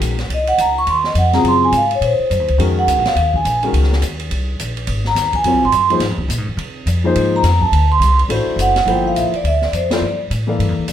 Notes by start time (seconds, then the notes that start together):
Already playing: D#3 G#3 C#4 F#4 A#4
0.00 A#1, hi-hat pedal, ride
0.18 snare, ride
0.29 C2, ride
0.34 D#5
0.47 F#5, ride
0.58 C#2 A#5, hi-hat pedal, ride
0.78 C#6
0.86 D#2 C6, ride
1.04 D#5, snare
1.15 F2 F#5, hi-hat pedal, ride
1.33 C#3 F#3 C4 F4 G#4 A#5, snare, ride
1.44 F#2, ride
1.48 C6
1.65 G#5
1.72 G#2, hi-hat pedal, ride
1.77 F5
1.91 ride
1.95 C#5
2.01 A#2 C5, ride
2.19 muted upright bass stroke
2.30 F#2, hi-hat pedal, ride
2.40 D#2
2.48 C#2, ride
2.58 F2 D#3 G#3 C#4 F#4 A#4, ride
2.79 F#5
2.87 C#2, hi-hat pedal, ride
2.97 A#1
3.05 F#1 F5, snare, ride
3.15 D#2, ride
3.34 G#5, kick
3.45 A#1, hi-hat pedal, ride
3.63 D#3 G#3 C#4 F#4 A#4, ride
3.73 C#2, ride
3.83 snare
3.93 snare
4.02 D#2, hi-hat pedal, ride
4.20 ride
4.31 C2, ride
4.59 A#1, hi-hat pedal, ride
4.77 ride
4.87 G#1, ride
5.05 A#5, snare
5.15 D#2, snare, hi-hat pedal, ride
5.33 G#5, kick, ride
5.44 F2 F#3 C4 F4 A#4 C#5, ride
5.53 C2
5.63 G#1 C6
5.72 F#2, hi-hat pedal, ride
5.90 F3 A#3 D#4 G#4 C5, ride
6.00 G#2, snare, ride
6.10 F2
6.18 C2, kick
6.28 A#2, hi-hat pedal, ride
6.38 G#2
6.48 F2
6.57 C3, ride
6.86 F2, hi-hat pedal, ride
7.04 F3 A#3 D#4 G#4 C5
7.16 G#2, ride
7.36 A#5
7.43 F2, snare, hi-hat pedal, ride
7.61 A5, kick
7.72 D2, ride
7.92 C6
7.99 C2, hi-hat pedal, ride
8.19 ride
8.28 A1 A3 D4 E4 F#4 C5, ride
8.46 muted upright bass stroke
8.56 F#1, hi-hat pedal, ride
8.61 F#5
8.76 snare, ride
8.86 G1 F3 A#3 E4 A4 C5, ride
8.91 G5
9.07 F5
9.15 A#1 E5, hi-hat pedal, ride
9.32 D5, muted upright bass stroke, ride
9.43 D2 E5, ride
9.62 D5, snare
9.72 F2 C5, hi-hat pedal, ride
9.90 F3 A#3 E4 A4 C5, snare, ride
9.94 D5
10.01 G2
10.30 A2, hi-hat pedal, ride
10.47 E3 A#3 A4 D5 F5
10.59 G2, ride
10.69 F2
10.78 D2
10.88 F2, hi-hat pedal, ride